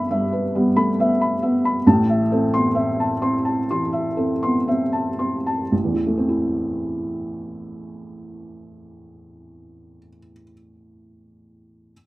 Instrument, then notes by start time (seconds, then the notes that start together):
felt piano
Already playing: G1 G2 A3 B3 B4 E5 B5
0.10 G2 E5
0.32 B4
0.55 G3 B3
0.76 A3 B5
0.99 B3 E5
1.21 B5
1.42 B3 E5
1.65 B5
1.86 A1 A2 A5
2.09 E5
2.32 C4 A4
2.54 B3 C6
2.75 C4 E5
3.00 A5
3.22 C4 C6
3.45 A5
3.71 E3 C6
3.93 E5
4.17 C4 A4
4.43 B3 C6
4.68 C4 E5
4.93 A5
5.19 C4 C6
5.47 A5
5.72 A1
5.84 E2
5.94 E3
6.07 A3
6.18 C4
6.29 E4